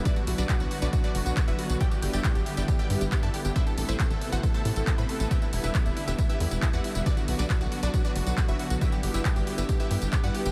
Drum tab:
HH |xxoxxxoxxxoxxxox|xxoxxxoxxxoxxxox|xxoxxxoxxxoxxxox|xxoxxxoxxxoxxxox|
TB |xx-xxx-xxx-xxx-x|xx-xxx-xxx-xxx-x|xx-xxx-xxx-xxx-x|xx-xxx-xxx-xxx-x|
CP |----x-------x---|----x-------x---|----x-------x---|----x-------x---|
BD |o---o---o---o---|o---o---o---o---|o---o---o---o---|o---o---o---o---|

HH |xxoxxxoxxxoxxxox|xxoxxxoxxxoxxxox|
TB |xx-xxx-xxx-xxx-x|xx-xxx-xxx-xxx-x|
CP |----x-------x---|----x-------x---|
BD |o---o---o---o---|o---o---o---o---|